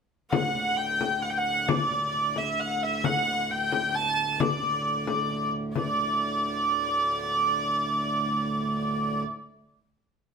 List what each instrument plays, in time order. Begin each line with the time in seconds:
0.32 harmonium D2 A2, hurdy-gurdy F#5, frame drum
0.55 frame drum
0.77 hurdy-gurdy G5, frame drum
1.01 frame drum
1.22 hurdy-gurdy F#5
1.30 hurdy-gurdy G5
1.38 hurdy-gurdy F#5
1.69 hurdy-gurdy D5, frame drum
1.91 frame drum
2.14 frame drum
2.36 hurdy-gurdy E5, frame drum
2.60 hurdy-gurdy F#5
2.83 hurdy-gurdy E5
3.04 hurdy-gurdy F#5, frame drum
3.27 frame drum
3.50 hurdy-gurdy G5, frame drum
3.72 frame drum
3.95 hurdy-gurdy A5
4.40 hurdy-gurdy D5, frame drum
4.63 frame drum
5.07 frame drum
5.30 frame drum
5.53 frame drum
5.74 harmonium D2 A2, hurdy-gurdy D5, frame drum